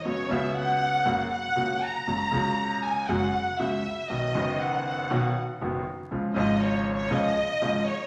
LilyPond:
<<
  \new Staff \with { instrumentName = "Violin section" } { \time 4/4 \key fis \mixolydian \tempo 4 = 119 cis''8 e''8 fis''4. fis''4 ais''8~ | ais''4. gis''8 fis''4 e''4 | dis''4 fis''4. r4. | r8 dis''8 \tuplet 3/2 { cis''8. r16 cis''8 } dis''4. cis''8 | }
  \new Staff \with { instrumentName = "Upright piano" } { \clef bass \time 4/4 \key fis \mixolydian <fis, cis fis b fis'>8 <cis, cis fis b fis'>4. <fis, cis fis ais fis'>8 r8 <cis, cis fis ais fis'>8 r8 | <fis, cis fis gis fis'>8 <cis, cis fis gis fis'>4. <fis, cis fis gis fis'>8 r8 <cis, cis fis gis fis'>8 r8 | <b,, b, dis fis b fis'>8 <fis,, fis, dis fis b fis'>4. <b,, b, dis fis b fis'>8 r8 <fis,, fis, dis fis b fis'>8 r8 | <cis, cis eis gis eis'>8 <gis,, gis, cis eis gis eis'>4. <cis, cis eis gis eis'>8 r8 <gis,, gis, cis eis gis eis'>8 r8 | }
  \new Staff \with { instrumentName = "Upright bass" } { \clef bass \time 4/4 \key fis \mixolydian fis,,8 cis,4. fis,,8 r8 cis,8 r8 | fis,,8 cis,4. fis,,8 r8 cis,8 r8 | b,,8 fis,,4. b,,8 r8 fis,,8 r8 | cis,8 gis,,4. cis,8 r8 gis,,8 r8 | }
>>